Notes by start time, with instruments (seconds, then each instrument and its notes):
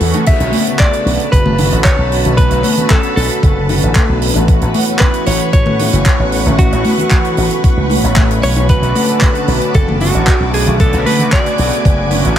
Already playing: clean electric guitar A4, string machine B4 F#5 C#6
0.00 slap bass E2, analog polysynth E3 A3 B3 C#4 F#4, open hi-hat
0.13 closed hi-hat, high bongo, high conga
0.26 analog polysynth D3 A3 B3 C#4 F#4, string machine B4 A5 B5, clean electric guitar E5, muted slap bass stroke, kick, closed hi-hat, crash
0.40 slap bass B1, closed hi-hat
0.52 open hi-hat, high conga
0.66 analog polysynth C#3 D3 A3 B3 F#4, closed hi-hat
0.79 clean electric guitar D5, kick, clap, closed hi-hat
0.93 closed hi-hat
1.05 slap bass B1, open hi-hat, high bongo
1.20 closed hi-hat
1.32 slap bass F#1, clean electric guitar B4, kick, closed hi-hat
1.46 high conga, low conga
1.58 analog polysynth D3 A3 B3 C#4 F#4, open hi-hat, high bongo, low conga
1.72 slap bass A1, closed hi-hat
1.84 clean electric guitar C#5, kick, clap, closed hi-hat
1.98 slap bass B1
2.12 open hi-hat
2.24 slap bass B1, analog polysynth D3 A3 B3 C#4 F#4, closed hi-hat, low conga
2.37 analog polysynth D3 A3 B3 C#4 F#4, clean electric guitar B4, kick, closed hi-hat
2.51 slap bass B1, closed hi-hat
2.63 open hi-hat, high conga
2.76 analog polysynth D3 A3 B3 C#4 F#4, closed hi-hat, low conga
2.90 clean electric guitar A4, kick, clap, closed hi-hat
3.03 closed hi-hat
3.16 slap bass B1, clean electric guitar A4, open hi-hat, high bongo
3.31 closed hi-hat
3.43 slap bass F#1, kick, closed hi-hat
3.68 analog polysynth D3 A3 B3 C#4 F#4, open hi-hat, high bongo
3.82 slap bass A1, closed hi-hat
3.95 kick, clap, closed hi-hat, high conga
4.09 slap bass B1
4.22 open hi-hat
4.34 slap bass A1, analog polysynth D3 A3 B3 C#4 F#4, closed hi-hat, high bongo
4.47 analog polysynth E3 A3 B3 C#4 F#4, string machine F#5 C#6, kick, closed hi-hat
4.61 slap bass A1, closed hi-hat
4.74 open hi-hat, high conga
4.87 analog polysynth E3 A3 B3 C#4 F#4, closed hi-hat
4.99 clean electric guitar B4, kick, clap, closed hi-hat
5.14 closed hi-hat
5.26 slap bass A1, clean electric guitar C#5, open hi-hat, high bongo
5.40 closed hi-hat
5.53 slap bass A2, clean electric guitar C#5, kick, closed hi-hat
5.66 high conga, low conga
5.79 analog polysynth E3 A3 B3 C#4 F#4, open hi-hat, high bongo, low conga
5.93 slap bass F#1, closed hi-hat
6.06 kick, clap, closed hi-hat
6.19 slap bass A1
6.32 open hi-hat
6.45 slap bass A1, analog polysynth E3 A3 B3 C#4 F#4, closed hi-hat, low conga
6.58 analog polysynth A3 B3 C#4 F#4, clean electric guitar F#4, kick, closed hi-hat
6.72 slap bass A1, closed hi-hat
6.84 open hi-hat, high conga
6.97 analog polysynth E3 A3 B3 C#4 F#4, closed hi-hat, low conga
7.11 kick, clap, closed hi-hat
7.25 closed hi-hat
7.37 slap bass A1, open hi-hat, high bongo
7.51 closed hi-hat
7.64 kick, closed hi-hat
7.77 slap bass C#2
7.89 analog polysynth E3 A3 B3 C#4 F#4, open hi-hat, high bongo, high conga
8.03 slap bass A1, closed hi-hat
8.16 kick, clap, closed hi-hat, high conga
8.31 closed hi-hat
8.43 slap bass B1, clean electric guitar C#5, open hi-hat
8.55 analog polysynth E3 A3 B3 C#4 F#4, closed hi-hat, high bongo
8.69 analog polysynth D3 A3 B3 C#4 F#4, clean electric guitar B4, string machine A5 D6, kick, closed hi-hat
8.82 slap bass B1, closed hi-hat
8.95 open hi-hat, high conga
9.08 analog polysynth D3 A3 B3 C#4 F#4, closed hi-hat
9.21 kick, clap, closed hi-hat
9.35 closed hi-hat
9.48 slap bass B1, open hi-hat, high bongo
9.62 closed hi-hat
9.74 slap bass F#1, clean electric guitar A4, kick, closed hi-hat
9.88 high conga, low conga
10.00 analog polysynth D3 A3 B3 C#4 F#4, clean electric guitar F#4, open hi-hat, high bongo, low conga
10.13 slap bass A1, closed hi-hat
10.27 kick, clap, closed hi-hat
10.40 slap bass B1
10.54 clean electric guitar G#4, open hi-hat
10.66 slap bass B1, analog polysynth D3 A3 B3 C#4 F#4, closed hi-hat, low conga
10.79 analog polysynth D3 A3 B3 C#4 F#4, clean electric guitar A4, string machine G#5, kick, closed hi-hat
10.93 slap bass B1, closed hi-hat
11.06 clean electric guitar B4, open hi-hat, high conga
11.18 analog polysynth C#3 D3 A3 B3 F#4, closed hi-hat, low conga
11.32 clean electric guitar D5, kick, clap, closed hi-hat
11.46 closed hi-hat
11.58 slap bass B1, open hi-hat, high bongo
11.73 closed hi-hat
11.85 slap bass F#1, kick, closed hi-hat
12.10 analog polysynth D3 A3 B3 C#4 F#4, open hi-hat, high bongo
12.25 slap bass A1, closed hi-hat